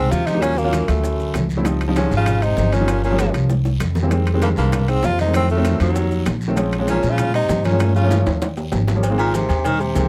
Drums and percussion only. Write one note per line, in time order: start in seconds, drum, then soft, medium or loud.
0.12 high bongo medium
0.12 low bongo medium
0.12 high conga medium
0.12 short guiro medium
0.12 maracas medium
0.27 high conga medium
0.27 high timbale medium
0.27 short guiro medium
0.27 maracas soft
0.42 high bongo medium
0.42 high conga soft
0.42 high timbale medium
0.42 long guiro medium
0.42 maracas medium
0.57 high bongo soft
0.57 high conga soft
0.57 maracas soft
0.73 high bongo medium
0.73 high conga loud
0.73 high timbale medium
0.73 short guiro medium
0.73 maracas medium
0.88 high bongo soft
0.88 high conga soft
0.88 high timbale medium
0.88 short guiro medium
0.88 maracas soft
1.03 high bongo medium
1.03 high conga soft
1.03 long guiro medium
1.03 maracas medium
1.19 high bongo soft
1.19 high conga soft
1.19 maracas soft
1.34 high bongo medium
1.34 low bongo medium
1.34 high conga medium
1.34 high timbale medium
1.34 short guiro medium
1.34 maracas medium
1.49 high conga medium
1.49 short guiro medium
1.49 maracas soft
1.65 high bongo medium
1.65 high conga soft
1.65 high timbale medium
1.65 long guiro medium
1.65 maracas medium
1.81 high bongo soft
1.81 high timbale medium
1.81 maracas soft
1.96 high bongo medium
1.96 high conga medium
1.96 high timbale medium
1.96 short guiro medium
1.96 maracas medium
2.11 high bongo soft
2.11 high conga soft
2.11 short guiro medium
2.11 maracas soft
2.26 high bongo medium
2.26 high conga soft
2.26 low conga medium
2.26 high timbale loud
2.26 long guiro medium
2.26 maracas medium
2.42 high bongo soft
2.42 high conga soft
2.42 high timbale medium
2.42 maracas soft
2.57 high bongo medium
2.57 low bongo medium
2.57 high conga medium
2.57 short guiro medium
2.57 maracas medium
2.72 high conga medium
2.72 high timbale medium
2.72 short guiro medium
2.72 maracas soft
2.88 high bongo medium
2.88 high conga soft
2.88 high timbale medium
2.88 long guiro medium
2.88 maracas medium
3.03 high bongo soft
3.03 high conga soft
3.03 maracas soft
3.19 high bongo medium
3.19 high conga medium
3.19 high timbale loud
3.19 short guiro medium
3.19 maracas medium
3.34 high bongo soft
3.34 high conga soft
3.34 high timbale medium
3.34 short guiro medium
3.34 maracas soft
3.49 high bongo medium
3.49 long guiro medium
3.49 maracas medium
3.65 high bongo medium
3.65 high conga soft
3.65 maracas soft
3.80 low bongo medium
3.80 high conga medium
3.80 high timbale loud
3.80 short guiro medium
3.80 maracas medium
3.95 low bongo loud
3.95 high conga medium
3.95 short guiro medium
3.95 maracas soft
4.11 high bongo medium
4.11 high conga soft
4.11 high timbale medium
4.11 long guiro medium
4.11 maracas medium
4.27 high bongo soft
4.27 high conga soft
4.27 high timbale medium
4.27 maracas soft
4.41 high bongo medium
4.41 high conga medium
4.41 high timbale medium
4.41 short guiro medium
4.41 maracas medium
4.56 high bongo soft
4.56 high conga soft
4.56 short guiro medium
4.56 maracas soft
4.72 high bongo medium
4.72 high conga soft
4.72 low conga medium
4.72 high timbale loud
4.72 long guiro medium
4.72 maracas medium
4.88 high bongo soft
4.88 high conga soft
4.88 high timbale medium
4.88 maracas soft
5.03 high bongo medium
5.03 low bongo medium
5.03 high conga medium
5.03 low timbale medium
5.03 short guiro medium
5.03 maracas medium
5.18 high conga medium
5.18 high timbale medium
5.18 short guiro medium
5.18 maracas soft
5.34 high bongo medium
5.34 high conga soft
5.34 high timbale medium
5.34 long guiro medium
5.34 maracas medium
5.49 high bongo soft
5.49 high conga soft
5.49 maracas soft
5.65 high bongo medium
5.65 high conga medium
5.65 high timbale medium
5.65 short guiro medium
5.65 maracas medium
5.80 high bongo soft
5.80 high conga soft
5.80 high timbale medium
5.80 short guiro medium
5.80 maracas soft
5.95 high bongo medium
5.95 high conga soft
5.95 long guiro medium
5.95 maracas medium
6.11 high bongo soft
6.11 high conga soft
6.11 maracas soft
6.26 high bongo medium
6.26 low bongo medium
6.26 high conga medium
6.26 high timbale medium
6.26 low timbale medium
6.26 short guiro medium
6.26 maracas medium
6.41 short guiro medium
6.41 maracas soft
6.57 high bongo medium
6.57 high timbale medium
6.57 long guiro medium
6.57 maracas medium
6.72 high bongo soft
6.72 high conga soft
6.72 high timbale medium
6.72 maracas soft
6.87 high bongo medium
6.87 high conga medium
6.87 high timbale medium
6.87 short guiro medium
6.87 maracas medium
7.03 high bongo soft
7.03 high conga soft
7.03 short guiro medium
7.03 maracas soft
7.18 high bongo medium
7.18 high conga soft
7.18 low conga medium
7.18 high timbale loud
7.18 long guiro medium
7.18 maracas medium
7.34 high bongo soft
7.34 high conga soft
7.34 high timbale medium
7.34 maracas soft
7.49 high bongo medium
7.49 low bongo medium
7.49 high conga medium
7.49 low timbale medium
7.49 short guiro medium
7.49 maracas medium
7.64 high conga medium
7.64 high timbale medium
7.64 short guiro medium
7.64 maracas soft
7.80 high bongo medium
7.80 high conga soft
7.80 high timbale loud
7.80 long guiro medium
7.80 maracas medium
7.95 high bongo soft
7.95 high conga soft
7.95 maracas soft
8.10 high bongo medium
8.10 high conga medium
8.10 high timbale medium
8.10 short guiro medium
8.10 maracas medium
8.26 high bongo soft
8.26 high conga soft
8.26 high timbale loud
8.26 short guiro medium
8.26 maracas soft
8.41 high bongo medium
8.41 high timbale medium
8.41 long guiro medium
8.41 maracas medium
8.57 high conga soft
8.57 low timbale medium
8.57 maracas soft
8.72 high conga medium
8.72 low timbale loud
8.72 short guiro medium
8.72 maracas medium
8.87 low bongo loud
8.87 high conga medium
8.87 low timbale medium
8.87 short guiro medium
8.87 maracas soft
9.03 cowbell loud
9.03 high conga soft
9.03 low agogo medium
9.03 long guiro medium
9.03 maracas medium
9.18 low agogo loud
9.18 maracas soft
9.34 cowbell medium
9.34 high conga medium
9.34 short guiro medium
9.34 maracas medium
9.49 cowbell medium
9.49 high conga soft
9.49 low agogo loud
9.49 short guiro medium
9.49 maracas soft
9.64 cowbell loud
9.64 high conga soft
9.64 low conga medium
9.64 low agogo loud
9.64 long guiro medium
9.64 maracas medium
9.80 high conga soft
9.80 maracas soft
9.95 cowbell medium
9.95 high conga medium
9.95 low agogo medium
9.95 short guiro medium
9.95 maracas medium